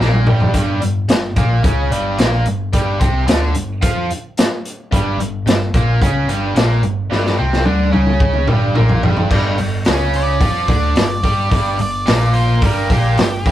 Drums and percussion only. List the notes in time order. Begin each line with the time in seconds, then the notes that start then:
0.01 snare
0.13 high tom
0.27 mid tom
0.40 floor tom
0.54 kick, closed hi-hat
0.82 closed hi-hat
1.09 snare, closed hi-hat
1.36 kick, closed hi-hat
1.64 kick, closed hi-hat
1.92 closed hi-hat
2.18 snare, closed hi-hat
2.46 closed hi-hat
2.73 kick, closed hi-hat
3.01 kick, closed hi-hat
3.28 snare, closed hi-hat
3.55 closed hi-hat
3.82 kick, closed hi-hat
4.11 closed hi-hat
4.37 snare, closed hi-hat
4.65 closed hi-hat
4.92 kick, closed hi-hat
5.20 closed hi-hat
5.47 snare, closed hi-hat
5.74 kick, closed hi-hat
6.02 kick, closed hi-hat
6.29 closed hi-hat
6.56 snare, closed hi-hat
6.83 closed hi-hat
7.12 snare
7.26 snare
7.53 snare
7.65 high tom
7.93 high tom
8.07 mid tom
8.20 kick
8.34 mid tom
8.48 mid tom
8.75 mid tom
8.89 floor tom
9.03 floor tom
9.17 floor tom
9.31 kick, crash
9.58 open hi-hat
9.85 snare, open hi-hat
10.14 open hi-hat
10.40 kick, open hi-hat
10.68 kick, open hi-hat
10.96 snare, open hi-hat
11.23 kick, open hi-hat
11.51 kick, open hi-hat
11.79 open hi-hat
12.07 snare, open hi-hat
12.34 open hi-hat
12.62 kick, open hi-hat
12.90 kick, open hi-hat
13.17 snare, open hi-hat
13.46 kick, open hi-hat